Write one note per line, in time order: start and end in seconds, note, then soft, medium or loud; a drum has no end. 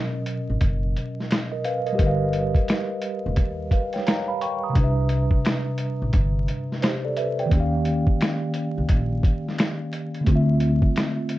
0.00 1.92 B2 medium
0.00 1.94 F#3 medium
0.00 1.96 C#4 medium
0.00 0.95 A#4 medium
0.00 0.96 D#5 medium
0.26 closed hi-hat medium
0.49 0.61 G#1 medium
0.61 0.93 F#1 medium
0.61 kick medium
0.61 closed hi-hat medium
0.96 closed hi-hat medium
1.20 snare soft
1.31 finger snap medium
1.31 snare loud
1.31 closed hi-hat medium
1.52 1.65 A#4 medium
1.52 1.64 D#5 medium
1.65 1.86 B4 medium
1.65 1.85 F5 medium
1.65 closed hi-hat medium
1.86 1.97 A#4 medium
1.86 2.03 D#5 medium
1.86 closed hi-hat soft
1.93 4.68 G3 medium
1.93 4.69 G4 medium
1.98 2.52 G1 medium
1.98 3.68 A#4 medium
1.98 3.69 B4 medium
1.98 kick loud
1.98 closed hi-hat medium
2.04 3.71 D#5 medium
2.04 3.71 F5 medium
2.33 closed hi-hat medium
2.55 kick medium
2.55 closed hi-hat soft
2.68 finger snap medium
2.68 snare medium
2.68 closed hi-hat medium
3.02 closed hi-hat medium
3.26 3.37 F1 medium
3.36 3.69 D#2 medium
3.36 kick medium
3.36 closed hi-hat medium
3.71 3.93 B4 medium
3.71 3.92 F5 medium
3.71 kick medium
3.71 closed hi-hat medium
3.93 4.06 C#5 soft
3.93 4.06 G5 medium
3.93 snare soft
3.93 closed hi-hat soft
4.07 4.27 F5 medium
4.07 4.27 A#5 medium
4.07 finger snap medium
4.07 snare loud
4.07 closed hi-hat medium
4.28 4.41 F5 medium
4.28 4.40 B5 medium
4.41 4.62 G5 medium
4.41 4.62 C#6 medium
4.41 closed hi-hat medium
4.63 4.96 A#5 soft
4.63 4.96 D#6 medium
4.69 7.44 C3 medium
4.69 7.46 G3 medium
4.75 5.28 C2 loud
4.75 7.48 D4 medium
4.75 kick loud
4.75 closed hi-hat medium
4.80 6.81 B4 medium
4.80 6.83 E5 medium
5.09 closed hi-hat medium
5.31 kick medium
5.45 finger snap medium
5.45 snare loud
5.45 closed hi-hat medium
5.78 closed hi-hat medium
6.02 6.13 A1 medium
6.13 6.46 G1 medium
6.13 kick medium
6.13 closed hi-hat medium
6.48 closed hi-hat medium
6.72 snare soft
6.82 7.03 G4 soft
6.82 7.03 C5 medium
6.82 finger snap medium
6.82 snare loud
6.82 closed hi-hat loud
7.05 7.17 A4 medium
7.05 7.17 D5 medium
7.17 7.38 B4 medium
7.17 7.37 E5 medium
7.17 closed hi-hat medium
7.39 7.72 D5 soft
7.39 7.72 G5 medium
7.39 closed hi-hat soft
7.46 10.20 D#3 medium
7.46 10.22 A#3 medium
7.51 8.04 D#2 loud
7.51 10.24 C#4 medium
7.51 kick loud
7.51 closed hi-hat medium
7.57 10.26 G4 medium
7.57 10.28 F5 medium
7.85 closed hi-hat medium
8.07 kick medium
8.21 finger snap medium
8.21 snare loud
8.21 closed hi-hat medium
8.54 closed hi-hat medium
8.78 8.89 C2 medium
8.89 9.22 A#1 medium
8.89 kick medium
8.89 closed hi-hat medium
9.23 kick medium
9.23 closed hi-hat medium
9.48 snare soft
9.58 finger snap medium
9.58 snare loud
9.58 closed hi-hat medium
9.93 closed hi-hat medium
10.14 closed hi-hat soft
10.21 11.39 D3 medium
10.21 11.39 A3 medium
10.26 10.79 D2 loud
10.26 11.39 C4 medium
10.26 kick loud
10.26 closed hi-hat medium
10.32 11.39 F4 medium
10.36 11.39 E5 medium
10.60 closed hi-hat medium
10.82 kick medium
10.96 finger snap medium
10.96 snare loud
10.96 closed hi-hat medium
11.29 closed hi-hat medium